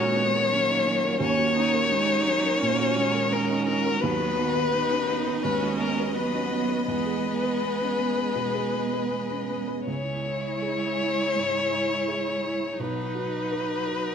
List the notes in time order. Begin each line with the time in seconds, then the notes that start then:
Already playing: D#2 A#2 G#3 C#4 D#4 F#4 A#4 C#5
0.00 F#4
0.16 B3 C#4
0.34 A#4
0.49 F#3 A#3 C#4
0.69 D#4
0.85 C#4
1.03 A#4
1.19 D#2 A#3 C#4 F#4 A#4 C#5
1.38 F#4
1.54 C#4 D#4
1.74 A#4
1.89 G#3 C#4 D#4
2.09 D#4
2.26 F#3 C#4
2.45 A#4
2.60 A#2 A#3 C#4
2.79 F#4
2.96 G#3 C#4
3.14 A#4
3.30 C#4 A#4
3.50 D#4
3.66 C#4 A#4
3.85 A#4
4.00 D#2 F#3 B3 B4 D#5
4.19 F#4
4.36 D#3 B3
4.55 B4
4.72 D#3 B3 D#4
4.90 C#4
5.08 B3
5.27 B4
5.43 D#2 G#3 C#4 B4
5.63 F#4
5.78 B3 A#4
5.99 B4
6.14 F#3 B3 B4
6.35 C#4
6.52 F#3 B3
6.69 B4
6.88 E2 G#3 B3 G#4 B4
7.06 G#4
7.25 B3
7.43 B4
7.62 B3
7.81 C#4
8.00 B3
8.18 B4
8.35 B2
8.54 G#4
8.74 B3
8.94 B4
9.12 B3
9.31 C#4
9.49 B3
9.68 B4
9.86 C#2 G#3 E4 G#4 C#5
10.25 E4
10.62 G#4
10.97 E4
11.36 G#2
11.72 E4
12.08 G#4
12.44 E4
12.77 B1 F#3 D#4 F#4 B4
13.15 F#4
13.52 B4
13.87 F#4